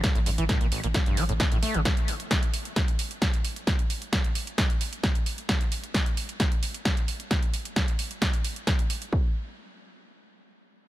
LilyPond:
<<
  \new Staff \with { instrumentName = "Acid bass" } { \clef bass \time 4/4 \key a \phrygian \tempo 4 = 132 bes,16 a,16 g,16 e16 a,16 bes,16 a,,16 bes,16 a,16 g,16 g16 a,16 a16 a,16 a16 c16 | r1 | r1 | r1 |
r1 | r1 | }
  \new Staff \with { instrumentName = "Sub bass" } { \clef bass \time 4/4 \key a \phrygian r16 a,,16 a,,16 a,,16 r16 a,,16 r16 a,,16 r16 a,,16 a,,16 a,,16 r16 a,,16 r16 a,,16 | r1 | r1 | r1 |
r1 | r1 | }
  \new DrumStaff \with { instrumentName = "Drums" } \drummode { \time 4/4 <hh bd sn>16 hh16 hho16 hh16 <hh bd sn>16 hh16 hho16 hh16 <hh bd sn>16 hh16 hho16 hh16 <hh bd sn>16 hh16 hho16 hh16 | <hh bd sn>16 hh16 hho16 hh16 <hh bd sn>16 hh16 hho16 hh16 <hh bd sn>16 hh16 hho16 hh16 <hh bd sn>16 hh16 hho16 hh16 | <hh bd sn>16 hh16 hho16 hh16 <hh bd sn>16 hh16 hho16 hh16 <hh bd sn>16 hh16 hho16 hh16 <hh bd sn>16 hh16 hho16 hh16 | <hh bd sn>16 hh16 hho16 hh16 <hh bd sn>16 hh16 hho16 hh16 <hh bd sn>16 hh16 hho16 hh16 <hh bd sn>16 hh16 hho16 hh16 |
<hh bd sn>16 hh16 hho16 hh16 <hh bd sn>16 hh16 hho16 hh16 <hh bd sn>16 hh16 hho16 hh16 <hh bd sn>16 hh16 hho16 hh16 | bd4 r4 r4 r4 | }
>>